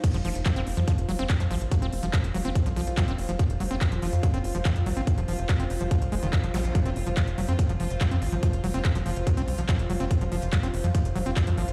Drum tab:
CC |x---------------|----------------|----------------|----------------|
HH |xxoxxxoxxxoxxxox|xxoxxxoxxxoxxxox|xxoxxxoxxxoxxxox|xxoxxxoxxxoxxxox|
CP |----x-------x---|----x-------x---|----x-------x---|----x-------x---|
BD |o---o---o---o---|o---o---o---o---|o---o---o---o---|o---o---o---o---|

CC |----------------|----------------|----------------|
HH |xxoxxxoxxxoxxxox|xxoxxxoxxxoxxxox|xxoxxxoxxxoxxxox|
CP |----x-------x---|----x-------x---|----x-------x---|
BD |o---o---o---o---|o---o---o---o---|o---o---o---o---|